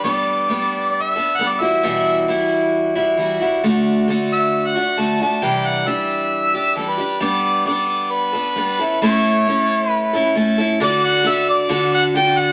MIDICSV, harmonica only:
0, 0, Header, 1, 2, 480
1, 0, Start_track
1, 0, Key_signature, 2, "major"
1, 0, Tempo, 448096
1, 41, Time_signature, 4, 2, 24, 8
1, 13416, End_track
2, 0, Start_track
2, 0, Title_t, "Harmonica"
2, 0, Program_c, 0, 22
2, 40, Note_on_c, 0, 74, 90
2, 959, Note_off_c, 0, 74, 0
2, 972, Note_on_c, 0, 74, 86
2, 1096, Note_on_c, 0, 76, 87
2, 1112, Note_off_c, 0, 74, 0
2, 1458, Note_on_c, 0, 78, 85
2, 1475, Note_off_c, 0, 76, 0
2, 1592, Note_on_c, 0, 74, 80
2, 1608, Note_off_c, 0, 78, 0
2, 1712, Note_on_c, 0, 76, 89
2, 1728, Note_off_c, 0, 74, 0
2, 2438, Note_off_c, 0, 76, 0
2, 4634, Note_on_c, 0, 76, 91
2, 4996, Note_on_c, 0, 78, 89
2, 5012, Note_off_c, 0, 76, 0
2, 5357, Note_on_c, 0, 81, 92
2, 5373, Note_off_c, 0, 78, 0
2, 5583, Note_off_c, 0, 81, 0
2, 5594, Note_on_c, 0, 81, 96
2, 5825, Note_on_c, 0, 79, 90
2, 5841, Note_off_c, 0, 81, 0
2, 6072, Note_on_c, 0, 78, 86
2, 6088, Note_off_c, 0, 79, 0
2, 6298, Note_on_c, 0, 76, 85
2, 6314, Note_off_c, 0, 78, 0
2, 7255, Note_on_c, 0, 69, 74
2, 7272, Note_off_c, 0, 76, 0
2, 7377, Note_on_c, 0, 71, 83
2, 7393, Note_off_c, 0, 69, 0
2, 7729, Note_off_c, 0, 71, 0
2, 7735, Note_on_c, 0, 74, 84
2, 8181, Note_off_c, 0, 74, 0
2, 8208, Note_on_c, 0, 74, 80
2, 8689, Note_on_c, 0, 71, 88
2, 8705, Note_off_c, 0, 74, 0
2, 9649, Note_off_c, 0, 71, 0
2, 9655, Note_on_c, 0, 73, 89
2, 10598, Note_off_c, 0, 73, 0
2, 10598, Note_on_c, 0, 71, 89
2, 11052, Note_off_c, 0, 71, 0
2, 11599, Note_on_c, 0, 74, 103
2, 11840, Note_on_c, 0, 78, 101
2, 11856, Note_off_c, 0, 74, 0
2, 12085, Note_on_c, 0, 76, 88
2, 12101, Note_off_c, 0, 78, 0
2, 12308, Note_off_c, 0, 76, 0
2, 12314, Note_on_c, 0, 74, 90
2, 12748, Note_off_c, 0, 74, 0
2, 12792, Note_on_c, 0, 78, 95
2, 12894, Note_off_c, 0, 78, 0
2, 13027, Note_on_c, 0, 79, 100
2, 13263, Note_on_c, 0, 78, 110
2, 13279, Note_off_c, 0, 79, 0
2, 13416, Note_off_c, 0, 78, 0
2, 13416, End_track
0, 0, End_of_file